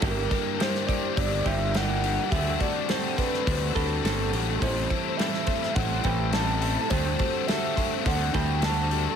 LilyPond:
<<
  \new Staff \with { instrumentName = "Soft synth lead" } { \time 4/4 \key d \mixolydian \tempo 4 = 105 bes'4 c''4 d''8 e''8 fis''4 | e''8 d''8 c''8 b'4 a'4 r8 | c''4 e''4 fis''8 g''8 a''4 | c''4 e''4 fis''8 g''8 a''4 | }
  \new Staff \with { instrumentName = "Clean electric guitar" } { \time 4/4 \key d \mixolydian g'8 a'8 g'8 d''8 d''8 c''8 bes'4 | g'8 a'8 g'8 c''8 c''8 b'8 a'4 | g'8 a'8 g'8 c''8 c''8 b'8 a'4 | g'8 a'8 g'8 c''8 c''8 b'8 a'4 | }
  \new Staff \with { instrumentName = "Clean electric guitar" } { \time 4/4 \key d \mixolydian <g, d g bes e' g'>4 <g bes e' g'>4. <g, d g bes e' g'>8 <g bes e' g'>8 <g bes e' g'>8 | <d g c' a'>4 <g c' a'>4. <d g c' a'>8 <g c' a'>8 <c' g' a'>8 | <a, e g c' e' a'>4 <g c' e' a'>4. <a, e g c' e' a'>8 <g c' e' a'>8 <g c' e' a'>8 | <d g c' a'>4 <g c' a'>4. <d g c' a'>8 <g c' a'>8 <c' g' a'>8 | }
  \new Staff \with { instrumentName = "Overdriven electric guitar" } { \time 4/4 \key d \mixolydian <g, d g bes d' g'>8 <g bes d' g'>8 <g bes d' g'>8 <g bes d' g'>8 <g, d g bes d' g'>8 <g bes d' g'>8 <g bes d' g'>8 <g bes d' g'>8 | <d a c' fis'>8 <a c' fis'>8 <d a c' fis'>8 <a c' fis'>8 <d a c' fis'>8 <a c' fis'>8 <d a c' fis'>8 <a c' fis'>8 | <a, e a c' e'>8 <a c' e'>8 <e a c' e'>8 <a c' e'>8 <a, e a c' e'>8 <a c' e'>8 <e a c' e'>8 <a c' e'>8 | <d a c' fis'>8 <a c' fis'>8 <d a c' fis'>8 <a c' fis'>8 <d a c' fis'>8 <a c' fis'>8 <d a c' fis'>8 <a c' fis'>8 | }
  \new Staff \with { instrumentName = "Fingered electric bass" } { \clef bass \time 4/4 \key d \mixolydian g,,8 r4. g,,8 g,,4. | d,8 r4. d,8 d,8 g,,8 a,,8 | a,,8 r4. a,,8 a,,4. | d,8 r4. d,8 d,4. | }
  \new DrumStaff \with { instrumentName = "Drums" } \drummode { \time 4/4 <hho bd>8 <hho bd>8 <hho sn>16 sn16 <hho bd>8 <hho bd>8 <hho bd>8 <hho sn>8 hho8 | <hho bd>8 <hho bd>8 <hho sn>8 <hho bd>16 sn16 <hho bd>8 <hho bd>8 <hho sn>8 hho8 | <hho bd>8 <hho bd>8 <hho sn>16 sn16 <hho bd>16 sn16 <hho bd>8 <hho bd>8 <hho sn>8 hho8 | <hho bd>8 <hho bd>8 <hho sn>8 <hho bd>8 <hho bd>8 <hho bd>8 <hho sn>8 hho8 | }
>>